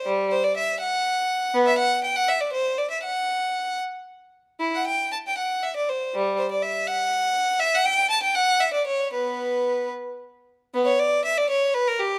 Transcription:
0.06 G3
0.32 C5
0.44 D5
0.57 E5
0.80 F#5
1.54 B3
1.66 E5
1.78 F#5
2.04 G5
2.16 F#5
2.28 E5
2.40 D5
2.53 C5
2.78 D5
2.91 E5
3.04 F#5
4.60 E4
4.75 F#5
4.87 G5
5.12 A5
5.27 G5
5.38 F#5
5.63 E5
5.76 D5
5.89 C5
6.15 G3
6.38 C5
6.51 D5
6.62 E5
6.87 F#5
7.59 E5
7.74 F#5
7.85 G5
8.10 A5
8.23 G5
8.35 F#5
8.60 E5
8.73 D5
8.87 C#5
9.13 B3 B4
10.74 B3
10.85 C#5
10.99 D5
11.25 E5
11.38 D5
11.50 C#5
11.74 B4
11.88 A#4
11.99 G4

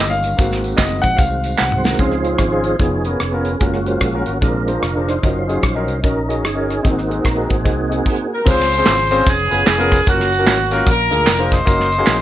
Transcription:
Already playing: D#3 G3 A#3 C#4 F4
0.00 G1
0.10 F5
0.23 closed hi-hat, tambourine
0.37 G#1 D#3 G#3 A#3 C4 F#4, kick, closed hi-hat, tambourine
0.52 snare
0.64 closed hi-hat, tambourine
0.77 F#1 D#5, kick, snare, clap, closed hi-hat, tambourine
1.02 A#1 F#5, kick, closed hi-hat, tambourine
1.17 C2 F5, kick, closed hi-hat, tambourine
1.44 closed hi-hat, tambourine
1.58 C2 F#5, snare, clap, tambourine
1.72 mid tom
1.78 C5
1.84 A#4, snare, tambourine
1.98 C#2 C#3 F3 C4 C#4 D#4 F4 G#4 C5, kick, closed hi-hat
2.12 cross-stick
2.23 C4 C#4 F4 G#4, closed hi-hat
2.38 G#1, kick, cross-stick, closed hi-hat
2.51 C4 C#4 F4 G#4
2.64 closed hi-hat
2.79 F1 F3 B3 C#4 D#4 F4 G#4, kick, closed hi-hat
3.05 B3 C#4 F4 A#4, closed hi-hat
3.20 F1, cross-stick, closed hi-hat
3.32 B3 C#4 F4 A#4
3.45 closed hi-hat
3.60 F#1 G#3 A#3 C#4 F4 F#4 A#4, kick, closed hi-hat
3.74 cross-stick
3.86 C#4 F4 F#4 C5, closed hi-hat
4.01 A#1, kick, cross-stick, closed hi-hat
4.14 C#4 F4 F#4 A#4
4.26 G#1, closed hi-hat
4.41 A#1 A#2 G#3 C4 D4 F4 G#4 A#4, kick, closed hi-hat
4.67 D4 F4 G#4 C5, closed hi-hat
4.82 F1, cross-stick, closed hi-hat
4.95 D4 F4 G#4 C5
5.08 D#4 C5, cross-stick, closed hi-hat
5.23 F#1 F#3 C#4 D#4 F4 F#4 A#4, kick, closed hi-hat
5.48 C#4 D#4 F#4 G#4, closed hi-hat
5.63 A#1, kick, cross-stick, closed hi-hat
5.75 C#4 D#4 F#4 A#4
5.87 C2, closed hi-hat
6.03 A#1 C#4 D#4 F#4 A#4, kick, closed hi-hat
6.28 C#4 D#4 F#4 G#4, closed hi-hat
6.44 G1 C#4 D#4 G#4, cross-stick, closed hi-hat
6.54 C#4 D#4 F#4 A#4
6.70 cross-stick, closed hi-hat
6.83 G#1 G#2 A#3 C4 D#4 F#4 G#4, kick, closed hi-hat
6.99 cross-stick
7.08 C4 D#4 F#4 G#4, closed hi-hat
7.25 A#1 A#4, kick, cross-stick, closed hi-hat
7.36 C4 D#4 F#4 G#4
7.50 G#1 C4 D#4 G#4, kick, closed hi-hat
7.64 C2 C4 D#4 F#4 G#4, kick, closed hi-hat
7.89 C4 D#4 F#4 G#4, closed hi-hat
8.06 kick, crash
8.34 A#4
8.44 C#2 C#3 C4 C#4 F4 G#4 C5, kick, crash, tambourine
8.49 F4 G#4 C5
8.60 snare
8.72 closed hi-hat, tambourine
8.77 C4 C#4 F4 G#4 C5
8.86 G#1, snare, clap, closed hi-hat, tambourine
9.11 C4 C#4 F4 G#4 C5, closed hi-hat, tambourine
9.26 F1 B3 C#4 G#4, kick, closed hi-hat, tambourine
9.50 F#1 B3 C#4 F4 G#4 B4, closed hi-hat, tambourine
9.67 F1, snare, clap, closed hi-hat, tambourine
9.78 B3 C#4 F4 G#4 A#4
9.91 kick, snare, closed hi-hat, tambourine
10.06 F#1 A#3 C#4 F4 F#4 A#4, kick, closed hi-hat, tambourine
10.20 snare
10.32 closed hi-hat, tambourine
10.39 A#3 C#4 F4 F#4 A#4
10.47 G#1, snare, clap, closed hi-hat, tambourine
10.71 A#3 C#4 F4 F#4 A#4, closed hi-hat, tambourine
10.86 A#1 A#2 D4 F4 A#4, kick, closed hi-hat, tambourine
11.10 D2 A#3 D4 F4 G#4 A#4, closed hi-hat, tambourine
11.27 F1, snare, clap, closed hi-hat, tambourine
11.39 A#3 D4 F4 G#4 C5
11.51 D#4 C5, kick, snare, closed hi-hat, tambourine
11.65 F#1 A#3 C#4 D#4 F#4 A#4, kick, closed hi-hat, tambourine
11.80 snare
11.92 closed hi-hat, tambourine
11.98 A#3 C#4 D#4 F#4 G#4
12.06 A#1, snare, clap, closed hi-hat, tambourine

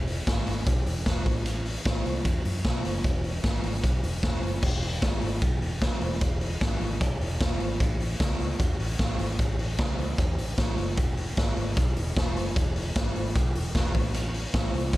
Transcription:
Already playing: E1
0.07 open hi-hat
0.27 G#1, kick, snare, hi-hat pedal, ride
0.47 G#1, open hi-hat
0.67 B1, kick, hi-hat pedal, ride
0.86 E1, open hi-hat
1.06 E1, kick, snare, hi-hat pedal, ride
1.26 A1, kick, open hi-hat
1.46 hi-hat pedal, ride
1.66 open hi-hat
1.85 A1, kick, snare, hi-hat pedal, ride
2.05 C2, open hi-hat
2.25 E2, kick, hi-hat pedal, ride
2.45 F#2, open hi-hat
2.65 B1, kick, snare, hi-hat pedal, ride
2.84 F#1, open hi-hat
3.04 E1, kick, hi-hat pedal, ride
3.24 open hi-hat
3.44 G#1, kick, snare, hi-hat pedal, ride
3.64 G#1, open hi-hat
3.84 B1, kick, hi-hat pedal, ride
4.03 E1, open hi-hat
4.23 E1, kick, snare, hi-hat pedal, ride
4.43 F#1, open hi-hat
4.63 E1, kick, crash
4.82 open hi-hat
5.02 G#1, kick, snare, hi-hat pedal, ride
5.21 G#1, open hi-hat
5.42 B1, kick, hi-hat pedal, ride
5.62 E1, open hi-hat
5.82 kick, snare, hi-hat pedal, ride
6.01 E1, open hi-hat
6.21 E1, kick, hi-hat pedal, ride
6.41 open hi-hat
6.61 G#1, kick, snare, hi-hat pedal, ride
6.81 G#1, open hi-hat
7.01 B1, kick, hi-hat pedal, ride
7.21 E1, open hi-hat
7.41 E1, kick, snare, hi-hat pedal, ride
7.60 G#1, open hi-hat
7.80 A1, kick, hi-hat pedal, ride
8.00 open hi-hat
8.20 C#2, kick, snare, hi-hat pedal, ride
8.40 C#2, open hi-hat
8.60 E2, kick, hi-hat pedal, ride
8.79 A1, open hi-hat
8.99 A1, kick, snare, hi-hat pedal, ride
9.19 G#1, open hi-hat
9.39 A1, kick, hi-hat pedal, ride
9.59 open hi-hat
9.78 C#2, kick, snare, hi-hat pedal, ride
9.98 C#2, open hi-hat
10.18 E2, kick, hi-hat pedal, ride
10.38 A1, open hi-hat
10.58 A1, kick, snare, hi-hat pedal, ride
10.78 F#1, open hi-hat
10.97 E1, kick, hi-hat pedal, ride
11.17 open hi-hat
11.37 G#1, kick, snare, hi-hat pedal, ride
11.57 G#1, open hi-hat
11.77 B1, kick, hi-hat pedal, ride
11.96 E1, open hi-hat
12.17 E1, kick, snare, hi-hat pedal, ride
12.36 F#1, open hi-hat
12.56 E1, kick, hi-hat pedal, ride
12.76 open hi-hat
12.96 G#1, kick, snare, hi-hat pedal, ride
13.16 G#1, open hi-hat
13.36 B1, kick, hi-hat pedal, ride
13.55 E1, open hi-hat
13.75 E1, kick, snare, hi-hat pedal, ride
13.95 A1, kick, open hi-hat
14.14 hi-hat pedal, ride
14.34 open hi-hat
14.54 A1, kick, snare, hi-hat pedal, ride
14.74 C2, open hi-hat
14.93 E2, kick, hi-hat pedal, ride

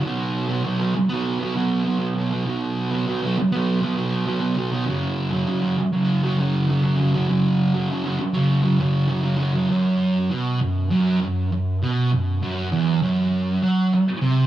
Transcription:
0.04 B2 F#3 B3
0.49 F#3 B3
0.64 B2 F#3 B3
0.78 B3
0.83 F#3
0.95 muted distorted electric guitar stroke
1.09 F#3 B3
1.40 F#3 B3
1.55 B2 F#3 B3
1.85 B2 F#3 B3
1.99 F#3 B3
2.14 B2 F#3 B3
2.30 B3
2.34 F#3
2.45 B2 F#3
2.49 B3
2.91 F#3 B3
3.07 B2 F#3 B3
3.22 F#3 B3
3.38 muted distorted electric guitar stroke
3.52 F#3 B3
3.81 F#3 B3
3.95 B2 F#3 B3
4.25 B2 F#3 B3
4.40 F#3 B3
4.55 B2 F#3 B3
4.71 F#3 B3
4.86 F#2 C#3 F#3
5.31 C#3 F#3
5.46 F#2 C#3 F#3
5.61 C#3 F#3
5.77 muted distorted electric guitar stroke
5.92 C#3 F#3
6.23 C#3 F#3
6.37 F#2 C#3 F#3
6.67 F#2 C#3 F#3
6.82 C#3 F#3
6.97 F#2 C#3
7.01 F#3
7.13 C#3 F#3
7.28 F#2 C#3 F#3
7.74 C#3 F#3
7.89 F#2 C#3
7.93 F#3
8.04 C#3 F#3
8.19 muted distorted electric guitar stroke
8.33 C#3 F#3
8.63 C#3 F#3
8.78 F#2 C#3 F#3
9.08 F#2 C#3 F#3
9.23 C#3 F#3
9.37 F#2 C#3
9.41 F#3
9.54 C#3 F#3
9.70 F#2
10.31 B2
10.61 F#2
10.91 F#2
11.21 F#2
11.52 F#2
11.82 B2
12.12 F#2
12.42 F#2
12.72 E2
13.02 F#2
13.62 F#3
13.93 muted distorted electric guitar stroke
14.22 C3

